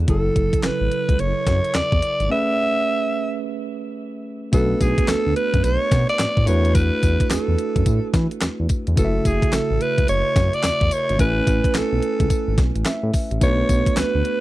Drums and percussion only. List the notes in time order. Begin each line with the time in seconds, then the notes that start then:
0.08 kick, closed hi-hat
0.36 kick, closed hi-hat
0.53 kick, closed hi-hat
0.63 snare, clap, closed hi-hat
0.92 closed hi-hat
1.09 kick, closed hi-hat
1.19 closed hi-hat
1.47 kick, snare, closed hi-hat
1.64 closed hi-hat
1.75 snare, clap, closed hi-hat
1.92 kick
2.02 closed hi-hat
2.20 closed hi-hat
4.53 kick, closed hi-hat, tambourine
4.81 kick, closed hi-hat, tambourine
4.98 kick, closed hi-hat
5.08 snare, clap, closed hi-hat, tambourine
5.36 closed hi-hat
5.54 kick, closed hi-hat
5.64 closed hi-hat, tambourine
5.92 kick, snare, closed hi-hat, tambourine
6.09 closed hi-hat
6.19 snare, clap, closed hi-hat, tambourine
6.37 kick
6.47 closed hi-hat, tambourine
6.65 closed hi-hat
6.75 kick, closed hi-hat, tambourine
7.03 kick, closed hi-hat, tambourine
7.20 kick, closed hi-hat
7.31 snare, clap, closed hi-hat, tambourine
7.59 closed hi-hat
7.76 kick, closed hi-hat
7.86 kick, closed hi-hat, tambourine
8.14 kick, snare, closed hi-hat, tambourine
8.31 closed hi-hat
8.41 snare, clap, closed hi-hat, tambourine
8.69 kick, closed hi-hat, tambourine
8.87 closed hi-hat
8.97 kick, closed hi-hat, tambourine
9.25 kick, closed hi-hat, tambourine
9.42 kick, closed hi-hat
9.53 snare, clap, closed hi-hat, tambourine
9.81 closed hi-hat
9.98 kick, closed hi-hat
10.08 closed hi-hat, tambourine
10.36 kick, snare, closed hi-hat, tambourine
10.53 closed hi-hat
10.64 snare, clap, closed hi-hat, tambourine
10.81 kick
10.91 closed hi-hat, tambourine
11.09 closed hi-hat
11.19 kick, closed hi-hat, tambourine
11.47 kick, closed hi-hat, tambourine
11.64 kick, closed hi-hat
11.75 snare, clap, closed hi-hat, tambourine
12.03 closed hi-hat
12.20 kick, closed hi-hat
12.30 kick, closed hi-hat, tambourine
12.58 kick, snare, closed hi-hat, tambourine
12.76 closed hi-hat
12.86 snare, clap, closed hi-hat, tambourine
13.14 kick, open hi-hat, tambourine
13.31 closed hi-hat
13.41 kick, closed hi-hat, tambourine
13.69 kick, closed hi-hat, tambourine
13.86 kick, closed hi-hat
13.97 snare, clap, closed hi-hat, tambourine
14.25 closed hi-hat